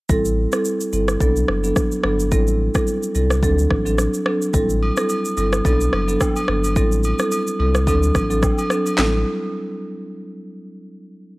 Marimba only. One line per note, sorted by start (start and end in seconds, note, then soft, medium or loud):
0.09 0.49 G3 medium
0.09 0.49 C4 medium
0.09 0.49 E4 medium
0.09 0.49 A4 loud
0.52 0.69 G3 medium
0.52 0.70 C4 medium
0.52 0.70 E4 medium
0.52 0.70 A4 medium
0.93 1.12 G3 medium
0.93 1.12 C4 medium
0.93 1.12 E4 medium
0.93 1.12 A4 medium
1.20 1.39 F#3 medium
1.20 1.40 B3 medium
1.20 1.40 D4 medium
1.20 1.40 A4 loud
1.63 1.81 F#3 medium
1.63 1.81 B3 medium
1.63 1.81 D4 medium
1.63 1.81 A4 medium
2.04 2.23 F#3 medium
2.04 2.23 B3 medium
2.04 2.23 D4 medium
2.04 2.23 A4 medium
2.31 2.71 G3 medium
2.31 2.71 C4 medium
2.31 2.71 E4 medium
2.31 2.71 A4 loud
2.75 2.92 G3 medium
2.75 2.92 C4 medium
2.75 2.92 E4 medium
2.75 2.92 A4 medium
3.15 3.34 G3 medium
3.15 3.34 C4 medium
3.15 3.34 E4 medium
3.15 3.34 A4 medium
3.43 3.62 F#3 medium
3.43 3.62 C4 medium
3.43 3.62 D4 medium
3.43 3.62 A4 loud
3.86 4.03 F#3 medium
3.86 4.03 C4 medium
3.86 4.03 D4 medium
3.86 4.03 A4 medium
4.26 4.45 F#3 medium
4.26 4.45 C4 medium
4.26 4.45 D4 medium
4.26 4.45 A4 medium
4.54 4.93 G3 medium
4.54 4.93 C4 medium
4.54 4.93 E4 medium
4.54 4.94 A4 loud
4.97 5.14 G3 medium
4.97 5.14 C4 medium
4.97 5.14 E4 medium
4.97 5.14 A4 medium
5.37 5.56 G3 medium
5.37 5.56 C4 medium
5.37 5.56 E4 medium
5.37 5.56 A4 medium
5.65 5.84 F#3 medium
5.65 5.84 B3 medium
5.65 5.84 D4 medium
5.65 5.84 A4 loud
6.08 6.25 F#3 medium
6.08 6.25 B3 medium
6.08 6.25 D4 medium
6.08 6.25 A4 medium
6.48 6.67 F#3 medium
6.48 6.67 B3 medium
6.48 6.67 D4 medium
6.48 6.67 A4 medium
6.76 7.15 G3 medium
6.76 7.16 C4 medium
6.76 7.16 E4 medium
6.76 7.16 A4 loud
7.19 7.36 G3 medium
7.19 7.36 C4 medium
7.19 7.36 E4 medium
7.19 7.36 A4 medium
7.59 7.78 G3 medium
7.59 7.78 C4 medium
7.59 7.78 E4 medium
7.59 7.79 A4 medium
7.87 8.06 F#3 medium
7.87 8.06 C4 medium
7.87 8.06 D4 medium
7.87 8.06 A4 loud
8.30 8.47 F#3 medium
8.30 8.47 C4 medium
8.30 8.47 D4 medium
8.30 8.47 A4 medium
8.70 8.89 F#3 medium
8.70 8.90 C4 medium
8.70 8.90 D4 medium
8.70 8.90 A4 medium
8.98 9.19 G3 medium
8.98 9.20 C4 medium
8.98 9.20 E4 medium
8.98 9.20 A4 medium